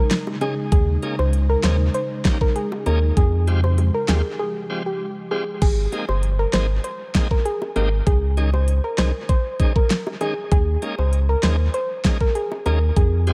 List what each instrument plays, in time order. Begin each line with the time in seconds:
Already playing: ambient pad C#3 G#3 D#4
0.11 snare, closed hi-hat
0.27 high bongo
0.41 tonewheel organ G#3 C#4 D#4 G#4, synth pluck G#4, closed hi-hat, high bongo, low bongo
0.72 sub bass D#2, synth pluck G#4, kick, closed hi-hat
1.02 tonewheel organ A#3 C#4 D#4 G#4, closed hi-hat, high bongo
1.19 sub bass C#2, synth pluck C5, high bongo
1.33 closed hi-hat
1.49 synth pluck A#4
1.64 sub bass D#2, tonewheel organ A#3 C#4 D#4 G#4, synth pluck C5, snare, closed hi-hat
1.94 synth pluck C5, closed hi-hat
2.25 tonewheel organ A#3 C#4 D#4 G4, kick, snare, closed hi-hat, high bongo
2.41 synth pluck A#4, kick
2.56 synth pluck G#4, closed hi-hat
2.72 high bongo
2.86 sub bass D#2, tonewheel organ A#3 C#4 D#4 G#4, synth pluck A#4, closed hi-hat, high bongo, low bongo
3.17 sub bass F2, ambient pad F3 G4, synth pluck G#4, kick, closed hi-hat
3.47 tonewheel organ G#3 C4 F4 G4, closed hi-hat, high bongo
3.64 synth pluck C5, high bongo
3.78 closed hi-hat, high bongo
3.94 synth pluck A#4
4.08 sub bass D#2, tonewheel organ G#3 C4 F4 G4, synth pluck G#4, snare, closed hi-hat, low bongo
4.39 synth pluck G#4
4.70 tonewheel organ G#3 C4 F4 G4
4.86 synth pluck G4
5.31 tonewheel organ G#3 C4 F4 G4, synth pluck G#4
5.62 sub bass G#1, synth pluck G#4, kick, closed hi-hat, crash
5.92 tonewheel organ G#3 A#3 C4 D#4 G#4, closed hi-hat, high bongo
6.09 sub bass G1, synth pluck C5, high bongo
6.23 closed hi-hat
6.39 synth pluck A#4
6.53 sub bass G#1, tonewheel organ G#3 A#3 C4 D#4 G#4, synth pluck C5, snare, closed hi-hat
6.84 synth pluck C5, closed hi-hat
7.15 tonewheel organ G#3 A#3 C4 D#4 G#4, kick, snare, closed hi-hat, high bongo
7.31 synth pluck A#4, kick
7.45 synth pluck G#4, closed hi-hat
7.62 high bongo
7.76 sub bass G#1, tonewheel organ G#3 A#3 C4 D#4 G4, synth pluck A#4, closed hi-hat, high bongo, low bongo
8.07 sub bass C#2, synth pluck G#4, kick, closed hi-hat
8.37 tonewheel organ D#3 G#3 C#4 D#4 G#4, closed hi-hat, high bongo
8.53 synth pluck C5, high bongo
8.68 closed hi-hat
8.84 synth pluck A#4
8.98 sub bass C2, tonewheel organ D#3 G#3 C#4 D#4 G#4, synth pluck C5, snare, closed hi-hat
9.29 synth pluck C5, kick, closed hi-hat
9.59 tonewheel organ D#3 G#3 C#4 D#4 G#4, kick, closed hi-hat, high bongo
9.76 synth pluck A#4, kick
9.90 snare, closed hi-hat
10.07 high bongo
10.21 tonewheel organ D#3 G#3 C#4 D#4 G#4, synth pluck G#4, closed hi-hat, high bongo, low bongo
10.52 sub bass D#2, synth pluck G#4, kick, closed hi-hat
10.82 tonewheel organ G#3 A#3 C#4 D#4 G#4, closed hi-hat, high bongo
10.98 sub bass C#2, synth pluck C5, high bongo
11.13 closed hi-hat
11.29 synth pluck A#4
11.43 sub bass D#2, tonewheel organ G#3 A#3 C#4 D#4 G#4, synth pluck C5, snare, closed hi-hat
11.74 synth pluck C5, closed hi-hat
12.04 tonewheel organ G#3 A#3 C#4 D#4 G#4, kick, snare, closed hi-hat, high bongo
12.21 synth pluck A#4, kick
12.35 synth pluck G#4, closed hi-hat
12.52 high bongo
12.66 sub bass D#2, tonewheel organ G#3 A#3 C#4 D#4 G#4, synth pluck A#4, closed hi-hat, high bongo, low bongo
12.96 sub bass F2, synth pluck G#4, kick, closed hi-hat
13.27 tonewheel organ G#3 C4 F4 G4 G#4, closed hi-hat, high bongo